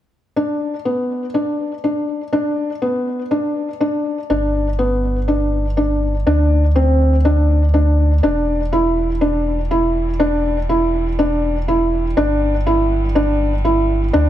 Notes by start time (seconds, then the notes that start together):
0.37 D4
0.85 B3
1.34 D4
1.84 D4
2.33 D4
2.82 B3
3.31 D4
3.81 D4
4.30 G1 D4
4.79 B3
5.28 D4
5.77 D4
6.27 D2 D4
6.76 C4
7.25 D4
7.74 D4
8.23 E1 E3 G3 D4
8.73 E4
9.21 D4
9.71 E4
10.20 D4
10.69 E4
11.19 D4
11.68 E4
12.16 G1 F#3 B3 D4
12.66 E4
13.15 D4
13.65 E4
14.13 D2 D3 C4 D4